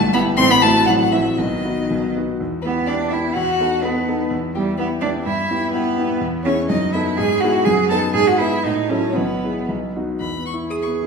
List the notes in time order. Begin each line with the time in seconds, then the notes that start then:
Already playing: G1 G2 A3
0.13 B3 E4 G4 B5
0.37 A1 A2 C4 C6
0.50 B3 B5
0.62 A3 C4 E4 F#4 A5
0.87 A1 A2 F#3 F#5
1.00 F#3 F#5
1.12 E3 C4 E4 F#4 E5
1.38 B1 B2 D#3 D#5
1.64 B3 D#4 F#4
1.90 B1 B2
2.16 B3 D#4 F#4
2.40 E2
2.62 B3 E4 G4 B4
2.86 B3 D4 E4 G4 D5
3.10 B3 E4 G4 E5
3.32 E2 F#4 F#5
3.60 B3 D#4 A4
3.83 B3 D#4 A4 B4
4.08 B3 D#4 A4
4.31 E2
4.55 G3 B3 E4 G4
4.77 B3 E4 G4 B4
5.00 B3 D4 E4 G4 D5
5.24 G2 E4 E5
5.50 B3 E4 G4
5.71 B3 E4 G4 B4
5.98 B3 E4 G4
6.21 E2
6.44 B3 C#4 E4 G#4 C#5
6.67 F#2 D#4 D#5
6.93 B3 D#4 E4 A4 E5
7.17 G#2 G#4 G#5
7.40 B3 E4 F#4 F#5
7.44 G#4
7.65 F#2 G#4 G#5
7.89 B3 D#4 A4 B4 A5
8.14 G#2 G#4 G#5
8.27 F#4 F#5
8.39 B3 E4 B4 E5
8.63 A2 D#4 D#5
8.89 F#3 C#4 E4 A4 C#5
9.15 B1 B3 B4
9.44 B3 E4 G#4
9.69 B1
9.95 B3 D#4 F#4
10.20 E2 B5
10.37 B3
10.46 C#6
10.54 E4
10.69 G#4 D#6
10.82 C#6
10.87 B3
11.03 E4